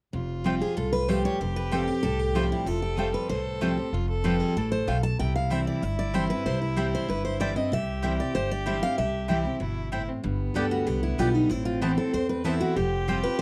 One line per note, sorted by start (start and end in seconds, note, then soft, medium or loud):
0.13 0.61 F1 medium
0.13 0.74 F2 medium
0.13 1.05 F4 medium
0.44 0.60 F3 medium
0.44 0.60 G3 medium
0.44 0.55 A3 medium
0.44 0.61 C4 medium
0.44 0.55 F4 medium
0.44 0.60 G4 medium
0.44 0.55 C5 medium
0.44 0.55 G5 medium
0.61 0.77 C4 soft
0.61 0.76 G4 medium
0.61 0.76 G#4 medium
0.77 1.24 C2 medium
0.77 1.37 A2 medium
0.77 0.92 A4 medium
0.93 1.09 B4 loud
1.08 1.39 F3 medium
1.08 1.39 G3 medium
1.08 1.18 A3 medium
1.08 1.39 C4 medium
1.08 1.18 F4 medium
1.08 2.64 G4 loud
1.08 1.40 G4 medium
1.08 1.24 C5 medium
1.08 1.18 C5 medium
1.08 1.18 G5 medium
1.25 1.40 C#5 loud
1.40 1.87 F1 medium
1.40 2.01 F2 medium
1.40 1.56 C5 medium
1.56 1.71 B4 medium
1.71 1.87 F3 medium
1.71 1.88 G3 medium
1.71 1.81 A3 medium
1.71 1.88 C4 loud
1.71 1.81 F4 medium
1.71 1.86 G4 medium
1.71 1.88 A4 medium
1.71 1.81 C5 medium
1.71 1.81 G5 loud
1.87 2.04 C4 soft
1.87 2.03 G4 medium
1.87 2.02 G4 medium
2.03 2.50 C2 medium
2.03 2.64 A2 medium
2.03 2.19 A4 loud
2.19 2.35 G4 medium
2.35 2.65 F3 medium
2.35 2.66 G3 medium
2.35 2.44 A3 medium
2.35 2.66 C4 medium
2.35 2.51 F4 medium
2.35 2.44 F4 medium
2.35 2.66 G4 medium
2.35 2.45 C5 loud
2.35 2.45 G5 medium
2.52 2.67 E4 medium
2.66 3.13 F1 medium
2.66 3.27 F2 medium
2.66 2.82 F4 medium
2.66 3.26 A4 loud
2.82 2.98 G4 medium
2.97 3.28 F3 medium
2.97 3.28 G3 medium
2.97 3.07 A3 medium
2.97 3.29 C4 medium
2.97 3.08 F4 medium
2.97 3.29 G4 medium
2.97 3.14 A4 medium
2.97 3.08 C5 medium
2.97 3.08 G5 medium
3.14 3.29 B4 medium
3.29 3.77 C2 medium
3.29 3.90 A2 medium
3.29 3.95 A4 loud
3.29 3.89 C5 medium
3.61 3.77 F3 medium
3.61 3.77 G3 medium
3.61 3.71 A3 medium
3.61 3.78 C4 medium
3.61 3.71 F4 medium
3.61 3.76 G4 medium
3.61 3.71 C5 loud
3.61 3.71 G5 medium
3.77 3.94 C4 soft
3.77 3.93 G4 medium
3.93 4.40 F1 medium
3.93 4.54 F2 medium
3.93 4.09 F4 loud
4.09 5.00 A4 loud
4.24 4.55 F3 medium
4.24 4.55 G3 medium
4.24 4.34 A3 medium
4.24 4.55 C4 medium
4.24 4.34 F4 medium
4.24 4.55 G4 loud
4.24 4.40 B4 medium
4.24 4.34 C5 medium
4.24 4.34 G5 medium
4.40 4.55 G#4 medium
4.56 4.83 A1 medium
4.56 4.87 A2 medium
4.56 4.71 A4 medium
4.72 4.87 C5 loud
4.87 5.15 B1 medium
4.87 5.18 B2 medium
4.87 4.97 A3 medium
4.87 4.97 F4 medium
4.87 4.97 C5 medium
4.87 5.03 F5 medium
4.87 4.97 G5 loud
5.03 5.19 A5 loud
5.19 5.67 C2 medium
5.19 5.80 C3 medium
5.19 7.74 E4 loud
5.19 5.35 G5 medium
5.36 5.51 F5 medium
5.50 5.81 E3 medium
5.50 5.81 G3 medium
5.50 5.60 C4 medium
5.50 5.82 C4 medium
5.50 5.60 E4 medium
5.50 5.82 E4 medium
5.50 5.60 C5 medium
5.50 5.67 E5 medium
5.50 5.60 G5 loud
5.67 5.82 D5 medium
5.82 6.30 G1 medium
5.82 6.43 G2 medium
5.82 5.98 E5 loud
5.99 6.14 D5 medium
6.14 6.29 E3 medium
6.14 6.30 G3 medium
6.14 6.23 C4 medium
6.14 6.30 C4 medium
6.14 6.23 E4 medium
6.14 6.29 E4 medium
6.14 6.30 C5 medium
6.14 6.23 C5 loud
6.14 6.24 G5 loud
6.30 6.46 C4 soft
6.30 6.45 E4 medium
6.30 6.45 B4 medium
6.45 6.92 C2 medium
6.45 7.06 C3 loud
6.45 6.61 C5 medium
6.62 6.77 E4 medium
6.76 7.07 E3 medium
6.76 7.07 G3 medium
6.76 6.86 C4 medium
6.76 7.07 C4 medium
6.76 6.86 E4 medium
6.76 7.08 E4 medium
6.76 6.93 G4 medium
6.76 6.86 C5 medium
6.76 6.86 G5 medium
6.95 7.09 C5 medium
7.08 7.56 G1 medium
7.08 7.69 G2 medium
7.08 7.24 B4 medium
7.25 7.40 C5 medium
7.40 7.55 E3 medium
7.40 7.56 G3 medium
7.40 7.49 C4 medium
7.40 7.56 C4 medium
7.40 7.49 E4 medium
7.40 7.54 E4 medium
7.40 7.50 C5 medium
7.40 7.56 D5 loud
7.40 7.50 G5 medium
7.55 7.72 C4 soft
7.55 7.71 E4 medium
7.55 7.71 D#5 medium
7.71 8.18 C2 medium
7.71 8.32 C3 medium
7.71 9.29 G4 loud
7.71 8.17 E5 loud
8.02 8.19 E3 medium
8.02 8.19 G3 medium
8.02 8.12 C4 medium
8.02 8.19 C4 loud
8.02 8.12 E4 medium
8.02 8.19 E4 loud
8.02 8.12 C5 medium
8.02 8.12 G5 medium
8.20 8.35 C4 medium
8.20 8.35 E4 medium
8.20 8.35 D5 medium
8.35 8.82 G1 medium
8.35 8.95 G2 medium
8.35 8.50 C5 loud
8.51 8.66 D5 loud
8.66 8.81 E3 medium
8.66 8.82 G3 medium
8.66 8.75 C4 medium
8.66 8.82 C4 medium
8.66 8.75 E4 medium
8.66 8.81 E4 medium
8.66 8.75 C5 medium
8.66 8.82 E5 medium
8.66 8.75 G5 medium
8.82 8.98 C4 medium
8.82 8.97 E4 medium
8.82 8.98 F5 loud
8.98 9.45 C2 medium
8.98 9.58 C3 medium
8.98 9.27 E5 medium
9.28 9.45 E3 medium
9.28 9.45 G3 medium
9.28 9.38 C4 medium
9.28 9.45 C4 medium
9.28 9.38 E4 medium
9.28 9.44 E4 medium
9.28 9.59 G4 medium
9.28 9.38 C5 medium
9.28 9.38 G5 medium
9.45 9.61 C4 soft
9.45 9.60 E4 medium
9.60 10.08 G1 medium
9.60 9.90 B2 medium
9.60 9.90 E4 medium
9.92 10.23 A2 medium
9.92 10.01 C4 medium
9.92 10.01 E4 medium
9.92 10.10 E4 medium
9.92 10.01 C5 medium
9.92 10.02 G5 loud
10.09 10.24 C4 medium
10.24 10.47 G1 medium
10.24 10.84 G2 medium
10.24 11.52 B3 medium
10.54 10.82 D2 medium
10.54 10.85 D3 medium
10.54 10.85 G3 medium
10.54 10.85 B3 medium
10.54 10.65 B3 medium
10.54 10.86 G4 medium
10.54 10.65 G4 medium
10.54 10.71 A4 medium
10.54 10.65 D5 medium
10.54 10.65 G5 medium
10.71 10.87 F#4 medium
10.87 11.14 C2 medium
10.87 11.17 D3 medium
10.87 11.02 G4 loud
11.03 11.19 E4 medium
11.18 11.45 B1 medium
11.18 11.48 D3 medium
11.18 11.49 G3 medium
11.18 11.28 B3 medium
11.18 11.49 B3 medium
11.18 11.34 F4 loud
11.18 11.28 G4 medium
11.18 11.49 G4 medium
11.18 11.28 D5 medium
11.18 11.28 G5 loud
11.34 11.51 D#4 medium
11.50 11.97 A1 medium
11.50 12.10 A2 medium
11.50 12.44 C4 loud
11.50 11.65 E4 medium
11.65 11.81 F4 medium
11.81 11.97 E3 medium
11.81 11.91 B3 medium
11.81 11.97 B3 medium
11.81 11.97 C4 medium
11.81 11.91 E4 medium
11.81 11.96 E4 medium
11.81 11.97 G4 medium
11.81 11.91 C5 loud
11.81 11.91 A5 medium
11.97 12.13 C4 soft
11.97 12.12 E4 medium
11.97 12.13 A4 medium
12.13 12.73 E2 loud
12.13 12.60 E2 medium
12.13 12.29 C5 loud
12.29 12.45 B4 medium
12.44 12.75 E3 medium
12.44 12.54 B3 medium
12.44 12.75 B3 medium
12.44 12.75 C4 medium
12.44 12.54 E4 loud
12.44 12.78 E4 loud
12.44 12.75 E4 loud
12.44 12.60 A4 medium
12.44 12.54 C5 loud
12.44 12.54 A5 loud
12.61 12.76 F#4 medium
12.76 13.23 F1 medium
12.76 13.07 F3 loud
12.76 13.42 G4 loud
12.76 13.21 G4 medium
13.08 13.23 F3 medium
13.08 13.24 G3 medium
13.08 13.17 C4 medium
13.08 13.24 C4 medium
13.08 13.17 F4 medium
13.08 13.22 F4 medium
13.08 13.18 C5 loud
13.08 13.18 G5 loud
13.23 13.40 C4 medium
13.23 13.39 F4 medium
13.23 13.38 B4 medium